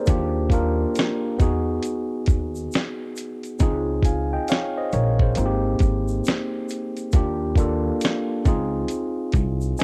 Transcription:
Already playing: tine electric piano G#4 C5
0.06 upright bass D#2, tine electric piano A#3 D4 F4 G4, kick, closed hi-hat, shaker
0.50 tine electric piano A#3 D4 F4, kick, closed hi-hat, shaker
0.54 tine electric piano A#4
0.95 snare, closed hi-hat, shaker
1.38 upright bass E2, tine electric piano B3 D#4 F#4 G#4, kick, closed hi-hat, shaker
1.82 closed hi-hat, shaker
2.26 upright bass D#2, kick, closed hi-hat, shaker
2.55 shaker
2.72 snare, closed hi-hat, shaker
3.16 closed hi-hat, shaker
3.43 closed hi-hat, shaker
3.59 upright bass C#2, tine electric piano C4 D#4 F4 G#4, kick, closed hi-hat, shaker
4.03 tine electric piano F5 G#5, kick, closed hi-hat, shaker
4.33 tine electric piano D#5 G5
4.48 tine electric piano C#5 F5, snare, closed hi-hat, shaker
4.78 tine electric piano C5 D#5
4.92 upright bass A#1, tine electric piano A#4 C#5, closed hi-hat, shaker
5.20 tine electric piano G#4 C5, kick
5.35 upright bass G#1, tine electric piano A#3 C4 D#4 F4, closed hi-hat, shaker
5.46 tine electric piano G4
5.79 upright bass G#1, kick, closed hi-hat, shaker
6.08 shaker
6.25 snare, closed hi-hat, shaker
6.69 closed hi-hat, shaker
6.97 closed hi-hat, shaker
7.12 upright bass D#2, tine electric piano A#3 D4 F4 G4, kick, closed hi-hat, shaker
7.56 tine electric piano A#3 D4 F4, kick, closed hi-hat, shaker
7.60 tine electric piano A4
8.01 closed hi-hat, shaker
8.05 snare
8.45 upright bass C#2, tine electric piano C4 D#4 F4 G#4, kick, closed hi-hat, shaker
8.88 closed hi-hat, shaker
9.32 upright bass C2, kick, closed hi-hat, shaker
9.61 shaker
9.78 tine electric piano C5 D#5 G#5, closed hi-hat, shaker

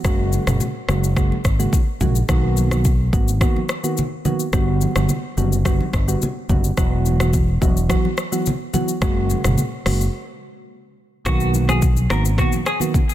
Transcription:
0.04 fingered electric bass F#1, synth keys C#3 G#3 A#3 F#4, kick, cross-stick, shaker
0.33 high conga, shaker
0.47 fingered electric bass F#1, synth keys C#3 G#3 A#3 F#4, cross-stick, mid tom, high conga, shaker
0.60 low conga, shaker
0.89 fingered electric bass F#1, synth keys C#3 G#3 A#3 F#4, cross-stick, high conga, shaker
1.04 shaker
1.17 synth keys C#3 G#3 A#3 F#4, kick, cross-stick, shaker
1.32 high conga
1.45 fingered electric bass G#1, kick, cross-stick, shaker
1.59 synth keys C#3 G#3 A#3 F#4, shaker
1.73 kick, low conga, shaker
2.01 fingered electric bass A#1, synth keys C#3 G#3 A#3 F#4, kick, mid tom, high conga, low conga, shaker
2.15 shaker
2.29 fingered electric bass B1, synth keys D#3 A#3 B3 F#4, kick, cross-stick, shaker
2.57 high conga, shaker
2.71 synth keys D#3 A#3 B3 F#4, cross-stick, high conga, shaker
2.85 kick, low conga, shaker
3.13 fingered electric bass G#1, synth keys D#3 A#3 B3 F#4, kick, high conga, shaker
3.28 shaker
3.41 synth keys D#3 A#3 B3 F#4, kick, cross-stick, shaker
3.56 high conga
3.69 cross-stick, shaker
3.83 synth keys D#3 A#3 B3 F#4, shaker
3.97 low conga, shaker
4.25 synth keys D#3 A#3 B3 F#4, high conga, low conga, shaker
4.40 shaker
4.53 fingered electric bass G1, synth keys D3 G3 B3 F#4, kick, cross-stick, shaker
4.81 high conga, shaker
4.96 fingered electric bass G1, synth keys D3 G3 B3 F#4, cross-stick, high conga, shaker
5.09 low conga, shaker
5.37 fingered electric bass F#1, synth keys D3 G3 B3 F#4, high conga, shaker
5.53 shaker
5.65 synth keys D3 G3 B3 F#4, kick, cross-stick, shaker
5.81 high conga
5.93 fingered electric bass G1, kick, cross-stick, shaker
6.08 synth keys D3 G3 B3 F#4, shaker
6.22 low conga, shaker
6.49 fingered electric bass F#1, synth keys D3 G3 B3 F#4, kick, high conga, low conga, shaker
6.64 shaker
6.77 fingered electric bass E1, synth keys E3 F#3 B3 F#4, kick, cross-stick, shaker
7.06 high conga, shaker
7.20 synth keys E3 F#3 B3 F#4, cross-stick, high conga, shaker
7.33 kick, low conga, shaker
7.61 fingered electric bass E1, synth keys E3 F#3 B3 F#4, kick, high conga, shaker
7.77 shaker
7.89 synth keys E3 F#3 B3 F#4, kick, cross-stick, shaker
8.05 high conga
8.18 cross-stick, shaker
8.32 synth keys E3 F#3 B3 F#4, shaker
8.46 low conga, shaker
8.73 synth keys E3 F#3 B3 F#4, high conga, low conga, shaker
8.88 shaker
9.01 fingered electric bass F#1, synth keys C#3 G#3 A#3 F#4, kick, cross-stick, shaker
9.30 high conga, shaker
9.44 fingered electric bass F#1, synth keys C#3 G#3 A#3 F#4, cross-stick, mid tom, high conga, shaker
9.58 low conga, shaker
9.86 fingered electric bass F#1, synth keys C#3 G#3 A#3 F#4, cross-stick, open hi-hat, high conga, shaker
10.01 shaker
11.26 fingered electric bass B1, synth keys D#3 A#3 B3 F#4, clean electric guitar F#4, kick, cross-stick, shaker
11.40 shaker
11.54 high conga, shaker
11.68 synth keys D#3 A#3 B3 F#4, clean electric guitar G#4, cross-stick, high conga, shaker
11.82 kick, low conga, shaker
11.96 high conga, shaker
12.10 fingered electric bass G#1, synth keys D#3 A#3 B3 F#4, clean electric guitar A#4, cross-stick, high conga, shaker
12.25 shaker
12.38 synth keys D#3 A#3 B3 F#4, clean electric guitar F#4, kick, cross-stick, mid tom, shaker
12.52 high conga, shaker
12.66 clean electric guitar G#4, cross-stick, shaker
12.80 synth keys D#3 A#3 B3 F#4, high conga, shaker
12.94 kick, low conga, shaker
13.09 shaker

